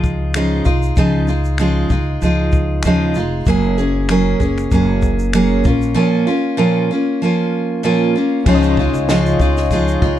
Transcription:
0.00 0.62 C#2 medium
0.00 0.35 F3 medium
0.00 0.36 G#3 medium
0.00 0.35 D#4 medium
0.00 0.36 F4 medium
0.00 kick medium
0.00 shaker soft
0.34 0.66 C#3 medium
0.34 0.67 F3 medium
0.34 0.67 G#3 medium
0.34 0.66 D#4 medium
0.34 0.64 F4 medium
0.34 finger snap loud
0.34 shaker medium
0.65 0.95 C2 medium
0.65 0.97 G#3 soft
0.65 0.98 D#4 soft
0.65 0.97 F4 medium
0.65 kick medium
0.65 shaker soft
0.83 shaker medium
0.96 1.87 C#2 medium
0.96 1.29 C#3 medium
0.96 1.29 F3 medium
0.96 1.29 G#3 medium
0.96 1.28 D#4 medium
0.96 1.27 F4 medium
0.96 kick loud
0.96 shaker medium
1.28 1.59 G#3 soft
1.28 1.59 D#4 soft
1.28 1.60 F4 soft
1.28 shaker soft
1.44 shaker soft
1.58 1.91 C#3 medium
1.58 1.91 F3 medium
1.58 1.92 G#3 medium
1.58 1.91 D#4 medium
1.58 1.89 F4 medium
1.58 finger snap medium
1.58 shaker soft
1.90 2.19 C#2 medium
1.90 2.22 G#3 soft
1.90 2.23 D#4 soft
1.90 2.22 F4 soft
1.90 kick medium
1.90 shaker soft
2.22 2.81 C#2 medium
2.22 2.85 F3 medium
2.22 2.86 G#3 medium
2.22 2.86 D#4 medium
2.22 2.86 F4 medium
2.22 shaker medium
2.52 kick medium
2.52 shaker soft
2.83 3.13 D#2 medium
2.83 3.16 C#3 medium
2.83 3.16 F3 medium
2.83 3.17 G#3 medium
2.83 finger snap medium
2.83 shaker medium
2.87 3.17 D#4 medium
2.87 3.14 F4 medium
3.14 3.45 F1 medium
3.14 3.48 D#4 medium
3.14 3.47 F4 soft
3.14 shaker soft
3.19 3.47 G#3 soft
3.46 4.36 F#1 medium
3.46 3.78 F#3 medium
3.46 3.79 A#3 medium
3.46 3.78 C#4 medium
3.46 3.77 G#4 medium
3.46 kick loud
3.46 shaker medium
3.78 4.09 A#3 soft
3.78 4.10 C#4 soft
3.78 4.09 G#4 medium
3.78 shaker soft
4.09 4.41 F#3 medium
4.09 4.41 A#3 medium
4.09 4.40 C#4 medium
4.09 4.38 G#4 medium
4.09 finger snap medium
4.09 shaker medium
4.40 4.69 F#1 medium
4.40 4.71 A#3 soft
4.40 4.72 C#4 soft
4.40 4.71 G#4 soft
4.40 kick medium
4.40 shaker soft
4.58 finger snap soft
4.58 shaker soft
4.71 5.61 F#1 medium
4.71 5.33 F#3 medium
4.71 5.34 A#3 medium
4.71 5.34 C#4 medium
4.71 5.35 G#4 medium
4.71 kick medium
4.71 shaker medium
5.02 kick medium
5.02 shaker medium
5.19 shaker soft
5.33 5.65 F#3 medium
5.33 5.66 A#3 medium
5.33 5.66 C#4 medium
5.33 5.65 G#4 medium
5.33 finger snap medium
5.33 shaker medium
5.64 5.94 A#1 medium
5.64 5.95 C#4 soft
5.64 5.96 F4 medium
5.64 kick medium
5.64 shaker soft
5.68 5.94 A#3 soft
5.82 shaker medium
5.94 6.27 A#2 medium
5.94 6.27 F3 medium
5.94 6.27 A#3 medium
5.94 6.27 C#4 medium
5.94 6.26 F4 medium
6.27 6.57 A#3 soft
6.27 6.58 C#4 medium
6.27 6.58 F4 medium
6.57 6.89 A#2 medium
6.57 6.90 F3 medium
6.57 6.90 A#3 medium
6.57 6.90 C#4 medium
6.57 6.89 F4 medium
6.91 7.22 A#3 soft
6.91 7.22 C#4 medium
6.91 7.22 F4 medium
7.22 7.83 F3 medium
7.22 7.83 A#3 medium
7.22 7.84 C#4 medium
7.22 7.85 F4 medium
7.83 8.15 A#2 medium
7.83 8.15 F3 medium
7.83 8.15 A#3 medium
7.83 8.15 C#4 medium
7.83 8.14 F4 medium
8.16 8.47 A#3 soft
8.16 8.47 C#4 medium
8.16 8.46 F4 medium
8.44 8.91 C#2 loud
8.44 8.77 C#3 medium
8.44 8.78 F3 medium
8.44 8.78 G#3 medium
8.44 10.19 C#4 medium
8.44 8.78 D#4 medium
8.44 10.19 F4 medium
8.44 10.19 C#5 medium
8.44 10.19 D#5 medium
8.44 10.19 G#5 medium
8.44 kick loud
8.44 crash medium
8.49 8.78 F4 medium
8.49 8.54 C#5 medium
8.55 10.19 D#5 medium
8.63 shaker soft
8.77 9.09 D#4 medium
8.77 9.09 F4 medium
8.77 kick medium
8.82 9.08 G#3 soft
8.93 9.35 C#2 medium
8.93 shaker soft
9.09 9.40 C#3 medium
9.09 9.40 F3 medium
9.09 9.40 G#3 medium
9.09 9.41 D#4 medium
9.09 9.40 F4 medium
9.09 snare medium
9.09 shaker medium
9.26 shaker soft
9.39 9.98 C#2 medium
9.39 9.72 D#4 medium
9.39 9.72 F4 medium
9.39 kick medium
9.39 shaker soft
9.43 9.71 G#3 soft
9.57 snare soft
9.57 shaker soft
9.71 10.02 F3 medium
9.71 10.03 G#3 medium
9.71 10.03 D#4 medium
9.71 10.01 F4 medium
9.71 kick medium
9.71 shaker medium
9.88 shaker soft
10.02 10.19 C#2 medium
10.02 10.19 G#3 medium
10.02 10.19 D#4 medium
10.02 10.19 F4 medium
10.02 kick loud

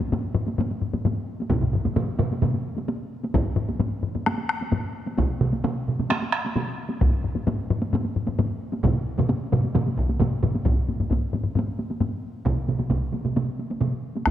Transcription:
0.00 taiko low-mid medium
0.00 taiko high medium
0.12 taiko low-mid medium
0.12 taiko high medium
0.34 taiko low-mid loud
0.47 taiko high medium
0.58 taiko low-mid medium
0.58 taiko high medium
0.71 taiko high soft
0.81 taiko low-mid medium
0.93 taiko low-mid medium
0.93 taiko high medium
1.05 taiko low-mid medium
1.05 taiko high medium
1.40 taiko high medium
1.50 taiko loud
1.50 taiko low-mid medium
1.50 taiko mid medium
1.50 taiko high medium
1.61 taiko low-mid medium
1.61 taiko mid medium
1.73 taiko low-mid medium
1.73 taiko mid medium
1.85 taiko low-mid medium
1.85 taiko mid medium
1.85 taiko high soft
1.96 taiko low-mid medium
1.96 taiko mid loud
1.96 taiko high medium
2.19 taiko low-mid loud
2.19 taiko mid medium
2.32 taiko high medium
2.42 taiko low-mid medium
2.42 taiko mid loud
2.42 taiko high medium
2.54 taiko high soft
2.77 taiko high medium
2.88 taiko high medium
3.23 taiko high medium
3.34 taiko loud
3.34 taiko low-mid loud
3.34 taiko high medium
3.56 taiko low-mid medium
3.69 taiko high medium
3.79 taiko low-mid medium
3.79 taiko high medium
4.03 taiko low-mid medium
4.15 taiko low-mid medium
4.15 taiko high medium
4.26 taiko rim medium
4.26 taiko high medium
4.38 taiko high soft
4.49 taiko rim medium
4.61 taiko high medium
4.72 taiko low-mid medium
4.72 taiko high medium
5.06 taiko high medium
5.18 taiko medium
5.18 taiko mid medium
5.18 taiko high medium
5.41 taiko mid loud
5.52 taiko high medium
5.64 taiko mid loud
5.64 taiko high medium
5.88 taiko mid medium
5.99 taiko mid medium
5.99 taiko high medium
6.10 taiko rim medium
6.10 taiko high medium
6.22 taiko high soft
6.33 taiko rim medium
6.45 taiko high medium
6.56 taiko mid medium
6.56 taiko high medium
6.90 taiko high medium
7.01 taiko medium
7.01 taiko low-mid loud
7.01 taiko high medium
7.24 taiko low-mid medium
7.35 taiko low-mid medium
7.35 taiko high soft
7.47 taiko low-mid medium
7.47 taiko high medium
7.70 taiko low-mid loud
7.82 taiko high medium
7.93 taiko low-mid medium
7.93 taiko high medium
8.04 taiko high soft
8.16 taiko low-mid medium
8.27 taiko low-mid medium
8.27 taiko high medium
8.39 taiko low-mid medium
8.39 taiko high medium
8.72 taiko high medium
8.84 taiko medium
8.84 taiko low-mid loud
8.84 taiko mid medium
8.84 taiko high medium
9.18 taiko low-mid medium
9.18 taiko mid loud
9.18 taiko high medium
9.29 taiko high medium
9.52 taiko low-mid loud
9.52 taiko mid loud
9.64 taiko high medium
9.75 taiko low-mid medium
9.75 taiko mid loud
9.75 taiko high medium
9.87 taiko high medium
9.98 taiko medium
10.09 taiko high medium
10.20 taiko low-mid medium
10.20 taiko mid loud
10.20 taiko high medium
10.43 taiko low-mid medium
10.43 taiko mid medium
10.55 taiko high medium
10.65 taiko medium
10.65 taiko low-mid medium
10.65 taiko high medium
10.88 taiko low-mid medium
10.88 taiko high soft
11.00 taiko low-mid medium
11.00 taiko high soft
11.10 taiko medium
11.10 taiko low-mid medium
11.10 taiko high medium
11.33 taiko low-mid medium
11.33 taiko high soft
11.43 taiko low-mid medium
11.55 taiko low-mid medium
11.55 taiko high medium
11.79 taiko high soft
11.90 taiko high soft
12.00 taiko low-mid medium
12.00 taiko high medium
12.46 taiko medium
12.46 taiko mid medium
12.46 taiko high medium
12.68 taiko mid medium
12.68 taiko high soft
12.79 taiko mid medium
12.79 taiko high soft
12.90 taiko medium
12.90 taiko mid medium
12.90 taiko high medium
13.13 taiko mid medium
13.13 taiko high soft
13.25 taiko mid medium
13.25 taiko high soft
13.36 taiko mid medium
13.36 taiko high medium
13.59 taiko high soft
13.70 taiko high soft
13.81 taiko mid medium
13.81 taiko high medium
14.16 taiko high soft
14.26 taiko rim medium
14.26 taiko medium
14.26 taiko high medium

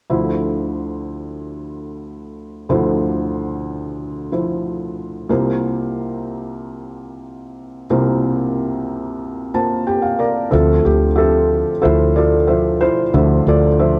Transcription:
0.10 2.66 D2 soft
0.10 2.66 D3 soft
0.10 2.66 F3 soft
0.10 2.66 E4 soft
0.10 2.66 C5 soft
2.69 5.25 D2 soft
2.69 5.25 D3 soft
2.69 4.29 F3 soft
2.69 4.29 E4 soft
2.69 4.29 C5 medium
4.32 5.29 F3 soft
4.32 5.29 E4 soft
4.32 5.29 C5 soft
5.29 7.86 C2 soft
5.29 7.86 C3 soft
5.29 7.86 A#3 soft
5.29 7.86 F4 soft
5.29 7.86 C5 medium
7.90 10.48 C2 medium
7.90 10.48 C3 soft
7.90 9.51 A#3 medium
7.90 9.50 F4 soft
7.90 9.51 C5 medium
9.54 10.52 A#3 soft
9.54 10.52 F4 soft
9.54 10.50 C5 soft
9.54 9.85 A5 soft
9.87 10.21 G4 medium
9.87 10.02 G5 medium
10.02 10.18 F5 soft
10.19 10.53 A#4 medium
10.19 10.50 D5 soft
10.51 13.09 D2 soft
10.51 10.79 D2 medium
10.51 13.09 D3 soft
10.51 11.05 F3 medium
10.51 11.19 C4 soft
10.51 11.18 F4 soft
10.51 10.86 A4 medium
10.51 11.06 C5 medium
10.51 11.05 E5 soft
10.85 11.63 D2 medium
10.85 11.14 G4 medium
11.15 11.70 F3 medium
11.15 11.71 G4 medium
11.15 11.80 A4 medium
11.15 11.70 E5 soft
11.20 12.46 C4 soft
11.20 11.83 F4 soft
11.81 12.87 D2 medium
11.81 12.36 F3 medium
11.81 12.81 E4 medium
11.81 12.17 F4 medium
11.81 12.16 A4 medium
11.81 12.13 C5 medium
11.81 12.36 E5 soft
12.16 12.80 F4 medium
12.16 13.43 A4 medium
12.16 12.83 D5 medium
12.47 13.02 F3 medium
12.47 12.79 C5 medium
12.47 13.01 E5 soft
12.81 13.99 E4 medium
12.81 13.47 F4 medium
12.81 13.12 C5 medium
13.13 13.99 D2 soft
13.13 13.40 D2 medium
13.13 13.99 D3 soft
13.13 13.67 F3 medium
13.13 13.67 C5 medium
13.13 13.67 E5 soft
13.47 13.99 D2 medium
13.47 13.99 F4 soft
13.47 13.99 A4 soft
13.47 13.99 D5 medium
13.79 13.99 F3 medium
13.79 13.99 C5 medium
13.79 13.99 E5 medium

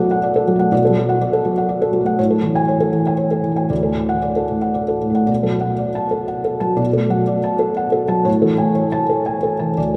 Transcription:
0.00 0.67 B2 medium
0.00 0.48 F#3 soft
0.00 0.56 A3 soft
0.00 0.36 A4 soft
0.00 0.23 D5 medium
0.00 0.11 F#5 medium
0.11 0.30 F#5 medium
0.23 0.42 D5 soft
0.36 0.55 A4 medium
0.48 0.67 F#3 soft
0.56 0.82 A3 soft
0.56 0.79 F#5 soft
0.72 2.14 B2 medium
0.72 0.91 D5 medium
0.85 1.04 A4 soft
0.90 0.96 F#3 soft
0.97 1.16 F#3 soft
1.09 1.28 F#5 medium
1.21 1.40 D5 soft
1.33 1.52 A4 soft
1.45 1.65 F#3 soft
1.58 1.77 F#5 soft
1.69 1.89 D5 soft
1.82 2.01 A4 soft
1.93 2.13 F#3 soft
2.01 2.18 A3 soft
2.06 2.18 F#5 soft
2.19 3.66 A2 medium
2.19 2.38 C#5 medium
2.30 2.50 A4 soft
2.36 2.62 A3 soft
2.43 2.63 E3 soft
2.55 2.76 G#5 medium
2.68 2.88 C#5 soft
2.80 3.01 A4 soft
2.93 3.13 E3 soft
3.07 3.27 G#5 soft
3.17 3.38 C#5 soft
3.31 3.52 A4 soft
3.44 3.65 E3 soft
3.52 3.70 A3 soft
3.56 3.70 G#5 soft
3.70 5.25 D2 soft
3.70 3.91 D5 soft
3.83 4.05 A4 soft
3.88 4.17 A3 soft
3.95 4.17 A2 soft
4.09 4.31 F#5 medium
4.22 4.44 D5 soft
4.36 4.58 A4 soft
4.49 4.71 A2 soft
4.62 4.84 F#5 soft
4.74 4.96 D5 soft
4.88 5.10 A4 soft
5.02 5.23 A2 soft
5.10 5.28 A3 soft
5.15 5.28 F#5 soft
5.27 6.74 B2 soft
5.27 5.55 D5 soft
5.43 5.72 F#3 soft
5.43 5.72 A4 soft
5.60 5.89 A3 soft
5.60 5.89 F#5 soft
5.78 6.06 D5 soft
5.95 6.23 A5 medium
6.11 6.39 A4 soft
6.28 6.55 F#5 soft
6.45 6.72 A4 soft
6.60 6.88 F#3 soft
6.60 6.88 A5 soft
6.76 8.22 B2 medium
6.76 7.04 D5 soft
6.93 7.21 A3 soft
6.93 7.21 A4 soft
7.10 7.38 F#3 soft
7.10 7.38 F#5 soft
7.27 7.55 D5 soft
7.44 7.71 A5 medium
7.59 7.87 A4 soft
7.77 8.04 F#5 soft
7.92 8.19 A4 soft
8.08 8.26 F#3 soft
8.08 8.26 A5 medium
8.25 9.72 A2 medium
8.25 8.52 C#5 medium
8.42 8.69 E3 soft
8.42 8.69 A4 soft
8.58 8.85 A3 soft
8.58 8.85 G#5 soft
8.75 9.02 C#5 soft
8.92 9.19 A5 medium
9.09 9.36 A4 soft
9.26 9.53 G#5 soft
9.43 9.70 A4 soft
9.59 9.77 E3 soft
9.59 9.77 A5 soft
9.77 9.97 D2 soft
9.77 9.97 D5 soft

